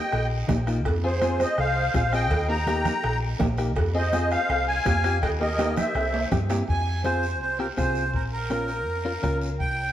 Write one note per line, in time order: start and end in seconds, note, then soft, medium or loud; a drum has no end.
0.00 0.27 D#5 medium
0.00 0.27 G5 loud
0.12 0.42 A#1 loud
0.12 bombo rim medium
0.12 cowbell medium
0.12 long guiro medium
0.48 0.85 A#1 medium
0.48 0.55 A#3 medium
0.48 0.55 D#4 medium
0.48 0.55 G4 medium
0.48 bombo low medium
0.48 bombo rim medium
0.48 high conga medium
0.48 low conga medium
0.48 low timbale medium
0.48 short guiro medium
0.67 0.80 A#3 medium
0.67 0.80 D#4 medium
0.67 0.80 F4 medium
0.67 bombo rim medium
0.67 short guiro medium
0.85 1.44 F2 loud
0.85 bombo low medium
0.85 bombo rim medium
0.85 cowbell loud
0.85 long guiro medium
1.04 1.10 C4 medium
1.04 1.10 F4 medium
1.04 1.10 G#4 medium
1.04 1.38 G#4 medium
1.04 1.42 C5 medium
1.22 1.47 C4 medium
1.22 1.47 F4 medium
1.22 1.48 G#4 medium
1.22 bombo rim medium
1.22 high conga medium
1.22 short guiro medium
1.40 1.58 C5 medium
1.40 1.59 D#5 medium
1.40 bombo rim medium
1.40 high conga medium
1.40 short guiro medium
1.58 1.87 C2 loud
1.58 1.93 C5 medium
1.58 1.93 F5 loud
1.58 bombo rim medium
1.58 cowbell medium
1.58 long guiro medium
1.94 2.31 A#1 loud
1.94 2.01 C4 medium
1.94 2.01 F4 medium
1.94 2.01 G#4 medium
1.94 2.12 C5 medium
1.94 2.13 F5 medium
1.94 bombo low medium
1.94 bombo rim medium
1.94 high conga medium
1.94 short guiro medium
2.13 2.26 C4 medium
2.13 2.26 F4 medium
2.13 2.26 G#4 medium
2.13 2.47 D#5 medium
2.13 2.47 G5 loud
2.13 bombo rim medium
2.13 short guiro medium
2.31 2.89 D#2 loud
2.31 bombo low medium
2.31 bombo rim medium
2.31 cowbell loud
2.31 long guiro medium
2.49 2.55 A#3 medium
2.49 2.56 D#4 medium
2.49 2.56 G4 medium
2.49 3.18 G5 medium
2.49 3.18 A#5 loud
2.67 2.93 A#3 medium
2.67 2.93 D#4 medium
2.67 2.93 G4 medium
2.67 bombo rim medium
2.67 high conga medium
2.67 short guiro medium
2.85 bombo rim medium
2.85 high conga medium
2.85 low conga medium
2.85 short guiro medium
3.03 3.33 A#1 loud
3.03 bombo rim medium
3.03 cowbell medium
3.03 long guiro medium
3.39 3.77 A#1 loud
3.39 3.46 A#3 medium
3.39 3.46 D#4 medium
3.39 3.47 G4 medium
3.39 bombo low medium
3.39 bombo rim medium
3.39 high conga medium
3.39 low conga medium
3.39 low timbale medium
3.39 short guiro medium
3.58 3.71 A#3 medium
3.58 3.71 D#4 medium
3.58 3.71 G4 medium
3.58 bombo rim medium
3.58 short guiro medium
3.76 4.35 F2 loud
3.76 bombo low medium
3.76 bombo rim medium
3.76 cowbell loud
3.76 long guiro medium
3.94 4.01 C4 medium
3.94 4.01 F4 soft
3.94 4.01 G#4 medium
3.94 4.29 C5 medium
3.94 4.29 D#5 medium
4.12 4.38 C4 medium
4.12 4.39 F4 medium
4.12 4.39 G#4 medium
4.12 bombo rim medium
4.12 high conga medium
4.12 short guiro medium
4.31 4.66 C5 medium
4.31 4.65 F5 loud
4.31 bombo rim medium
4.31 short guiro medium
4.49 4.78 C2 loud
4.49 bombo rim medium
4.49 cowbell medium
4.49 long guiro medium
4.67 5.19 F5 medium
4.67 5.18 G#5 loud
4.85 5.23 F2 medium
4.85 4.92 C4 medium
4.85 4.92 F4 medium
4.85 4.92 G4 medium
4.85 bombo low medium
4.85 bombo rim medium
4.85 high conga medium
4.85 low timbale medium
4.85 short guiro medium
5.04 5.17 C4 medium
5.04 5.17 F4 medium
5.04 5.17 G4 medium
5.04 bombo rim medium
5.04 short guiro medium
5.22 5.81 D#2 loud
5.22 5.31 D#5 medium
5.22 5.30 G5 loud
5.22 bombo low medium
5.22 bombo rim medium
5.22 cowbell loud
5.22 long guiro medium
5.40 5.47 A#3 medium
5.40 5.47 D#4 medium
5.40 5.47 G4 medium
5.40 5.74 A#4 medium
5.40 5.75 D#5 medium
5.59 5.84 A#3 medium
5.59 5.84 D#4 medium
5.59 5.84 G4 medium
5.59 bombo rim medium
5.59 high conga medium
5.59 high timbale loud
5.59 short guiro medium
5.76 6.28 C5 medium
5.76 6.28 E5 medium
5.76 bombo rim medium
5.76 high conga medium
5.76 low conga medium
5.76 short guiro medium
5.95 6.24 C2 medium
5.95 bombo rim medium
5.95 cowbell medium
5.95 long guiro medium
6.14 low timbale medium
6.32 6.61 G2 medium
6.32 6.38 C4 medium
6.32 6.38 E4 medium
6.32 6.38 G4 medium
6.32 bombo low medium
6.32 bombo rim medium
6.32 high conga medium
6.32 low conga medium
6.32 short guiro medium
6.49 6.62 C4 medium
6.49 6.63 E4 medium
6.49 6.63 G4 medium
6.49 bombo rim medium
6.49 low timbale loud
6.49 short guiro medium
6.68 7.41 F2 medium
6.68 7.02 G#5 loud
6.68 bombo low medium
6.68 high conga soft
6.68 long guiro medium
7.04 7.24 C4 medium
7.04 7.24 F4 medium
7.04 7.24 G#4 medium
7.04 7.38 C5 medium
7.04 bombo rim medium
7.04 high conga medium
7.04 short guiro medium
7.23 short guiro medium
7.41 7.70 C2 medium
7.41 7.58 C5 medium
7.41 high conga soft
7.41 long guiro medium
7.59 7.66 C4 medium
7.59 7.66 F4 soft
7.59 7.66 G4 medium
7.59 7.67 A#4 medium
7.59 bombo rim medium
7.77 8.14 C2 medium
7.77 8.03 C4 medium
7.77 8.03 F4 medium
7.77 8.03 G#4 medium
7.77 8.11 C5 medium
7.77 bombo low medium
7.77 bombo rim medium
7.77 high conga medium
7.77 short guiro medium
7.95 short guiro medium
8.14 8.87 A#1 medium
8.14 8.22 A#4 medium
8.14 bombo low medium
8.14 high conga soft
8.14 long guiro medium
8.32 9.38 A#4 medium
8.50 8.70 C#4 medium
8.50 8.70 F4 medium
8.50 8.70 A#4 medium
8.50 bombo rim medium
8.50 high conga medium
8.50 short guiro medium
8.68 short guiro medium
8.87 9.16 F2 medium
8.87 high conga soft
8.87 long guiro medium
9.05 9.11 C#4 medium
9.05 9.12 F4 medium
9.05 9.12 A#4 medium
9.23 9.60 C#2 medium
9.23 9.49 C#4 medium
9.23 9.49 F4 medium
9.23 9.49 A#4 medium
9.23 bombo low medium
9.23 bombo rim medium
9.23 high conga medium
9.23 short guiro medium
9.42 short guiro medium
9.59 9.92 C2 medium
9.59 9.92 G5 loud
9.59 bombo low medium
9.59 high conga soft
9.59 long guiro medium